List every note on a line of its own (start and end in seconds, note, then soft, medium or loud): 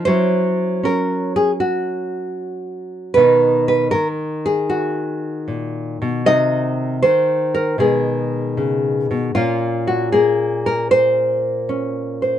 0.05 3.17 F#3 medium
0.05 0.82 C#4 medium
0.05 1.60 E4 medium
0.05 0.83 C5 loud
0.83 3.12 C#4 medium
0.83 1.36 A#4 medium
1.36 1.51 G#4 medium
1.60 3.15 F#4 medium
3.14 3.93 B2 medium
3.14 3.93 D#3 soft
3.14 3.67 B4 loud
3.19 4.69 D#4 soft
3.68 3.91 B4 medium
3.91 6.25 D#3 medium
3.91 4.07 A#4 loud
4.46 5.47 G#4 medium
4.70 6.24 F#4 medium
5.48 6.00 A#2 medium
6.02 6.25 B2 medium
6.26 7.03 C3 medium
6.26 7.02 D#3 medium
6.26 7.77 D#4 soft
6.26 7.54 F#4 soft
6.26 7.02 D#5 loud
7.02 7.78 D#3 medium
7.02 7.80 C5 medium
7.55 7.79 A#4 medium
7.78 9.09 B2 medium
7.78 9.34 D#3 soft
7.78 9.36 G#3 soft
7.78 9.34 G#4 medium
8.57 9.10 C#3 medium
9.11 9.35 B2 medium
9.35 12.39 A#2 medium
9.35 10.13 A#3 soft
9.35 11.69 C#4 medium
9.35 10.65 F4 medium
9.87 10.12 F#4 medium
10.12 12.39 A#3 medium
10.12 11.42 G#4 medium
10.66 10.90 A#4 medium
10.91 12.20 C5 loud
11.69 12.39 C#4 soft
12.22 12.39 C5 soft